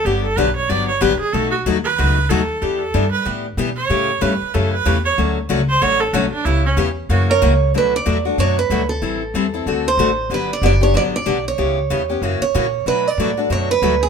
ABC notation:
X:1
M:4/4
L:1/8
Q:"Swing" 1/4=187
K:Bm
V:1 name="Steel-string acoustic guitar"
z8 | z8 | z8 | z8 |
z8 | z4 z c3 | B d2 z c B2 A- | A4- A =c3 |
B d d c d d2 c- | c4- c c3 | B d2 z c B2 ^G |]
V:2 name="Viola"
G A B c d c B ^G | A F z B3 A2 | G A2 B z3 c- | c2 B2 A B2 c |
z3 =c ^c A F D | E C z2 F ^A z2 | z8 | z8 |
z8 | z8 | z8 |]
V:3 name="Steel-string acoustic guitar"
[D,F,B,DG] z [D,F,B,DG] z [D,F,B,DG] z [D,F,B,DG] z | [B,,F,A,^DF] z [B,,F,A,DF] z [B,,F,A,DF] z [B,,F,A,DF] z | [E,B,DG] z [E,B,DG] z [E,B,DG] z [E,B,DG] z | [C,E,A,CG] z [C,E,A,CG] z [C,E,A,CG] z [C,E,A,CG] z |
[D,F,A,CF] z [D,F,A,CF] z [D,F,A,CF] z [D,F,A,CF] z | [C,E,B,CG] z [C,E,B,CG] z [C,E,^A,CF] z [C,E,A,CF] z | [B,,F,A,DF] z [B,,F,A,DF] [A,DF] [B,,F,A,DF] z [B,,F,A,DF] z | [E,G,=CEA] z [E,G,CEA] [CEA] [D,A,CFA] z [D,A,CFA] z |
[D,F,B,DG] z [D,F,B,DG] [B,DG] [D,F,B,DG] z [D,F,B,DG] z | [C,E,B,CG] z [C,E,B,CG] [B,CG] [C,E,^A,CF] z [C,E,A,CF] z | [B,,F,A,DF] z [B,,F,A,DF] [A,DF] [B,,F,A,DF] z [B,,F,A,DF] z |]
V:4 name="Upright bass" clef=bass
G,,,2 B,,,2 G,,,2 A,,, z | B,,,2 ^D,,2 C,,2 D,,2 | E,,2 G,,2 A,,2 B,,2 | A,,2 G,, z F,,2 E,,2 |
D,,2 C,,2 A,,,2 B,,, z | C,,2 E,,2 F,,2 C,,2 | D,,2 E,,2 F,,2 D,,2 | A,,,2 E,,2 D,,2 A,,,2 |
G,,,2 F,,,2 A,,,2 B,,,2 | C,,2 E,,2 F,, z ^A,,2 | B,,2 A,,2 F,,2 D,,2 |]